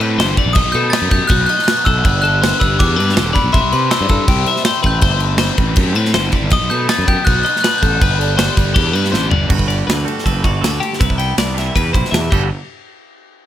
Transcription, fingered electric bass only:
0.00 0.20 A2 loud
0.18 0.34 G1 loud
0.46 0.54 A#1 loud
0.56 0.63 B1 loud
0.65 0.73 B1 medium
0.74 0.90 B2 loud
1.02 1.10 F#2 loud
1.12 1.19 F#2 loud
1.30 1.46 B1 loud
1.87 2.02 B1 medium
2.05 2.51 G1 loud
2.62 2.77 G1 medium
2.81 2.99 E2 loud
2.99 3.19 G2 loud
3.17 3.32 E1 loud
3.44 3.52 B1 loud
3.54 3.62 C2 loud
3.64 3.71 C2 medium
3.73 3.88 C3 loud
4.01 4.08 G2 loud
4.10 4.18 G2 loud
4.28 4.44 C2 loud
4.85 5.00 A1 medium
5.02 5.49 G1 loud
5.59 5.74 A1 medium
5.77 5.96 F#2 loud
5.96 6.16 A2 loud
6.15 6.30 G1 loud
6.42 6.50 G1 loud
6.52 6.59 B1 loud
6.61 6.69 B1 medium
6.71 6.86 B2 loud
6.99 7.06 F#2 loud
7.08 7.16 F#2 medium
7.27 7.42 B1 loud
7.83 7.98 A1 loud
8.02 8.48 G1 loud
8.57 8.73 G1 medium
8.76 8.95 E2 loud
8.95 9.13 G2 medium
9.13 9.30 A1 medium
9.31 9.48 G1 medium
9.50 9.81 G1 loud
9.88 10.03 D2 medium
10.26 10.45 F#1 loud
10.45 10.60 G1 medium
10.62 10.78 D2 medium
11.01 11.32 C2 loud
11.38 11.69 C2 medium
11.76 11.91 E2 loud
11.95 12.02 B1 loud
12.12 12.28 E2 loud
12.32 12.49 G1 loud

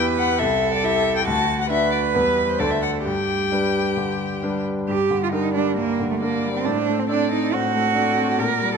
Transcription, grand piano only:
0.00 0.42 E2 medium
0.00 0.35 E4 soft
0.00 0.35 G4 soft
0.40 0.82 C2 medium
0.84 1.23 E4 soft
0.84 1.23 G4 soft
1.27 1.69 D2 medium
1.70 2.11 D4 soft
1.70 2.11 F#4 soft
2.14 2.58 E2 soft
2.14 2.56 G3 soft
2.14 2.56 B3 soft
2.14 2.56 B4 soft
2.59 3.04 D2 soft
2.59 3.02 A3 soft
2.59 3.02 D4 soft
2.59 3.02 C5 soft
3.05 3.50 G2 soft
3.51 3.93 G3 soft
3.51 3.93 D4 soft
3.51 3.94 B4 soft
3.97 4.71 D3 soft
4.43 4.85 G3 soft
4.43 4.85 D4 soft
4.43 4.85 B4 soft
4.88 5.74 G2 soft
5.10 5.46 D3 soft
5.32 5.52 G3 soft
5.32 5.53 D4 soft
5.32 5.53 A#4 soft
5.55 5.90 G3 soft
5.77 6.62 G2 soft
6.00 6.35 D3 soft
6.21 6.41 G3 soft
6.21 6.41 D4 soft
6.21 6.41 A#4 soft
6.43 6.65 G3 soft
6.65 7.50 A2 soft
6.88 7.23 A3 soft
7.09 7.29 C4 soft
7.09 7.29 D4 soft
7.09 7.30 A4 soft
7.30 7.66 C4 soft
7.52 8.37 A2 soft
7.74 8.09 A3 soft
7.95 8.15 C4 soft
7.95 8.15 D4 soft
7.95 8.16 A4 soft
8.16 8.39 C4 soft
8.37 8.77 A#2 soft
8.59 8.77 G3 soft

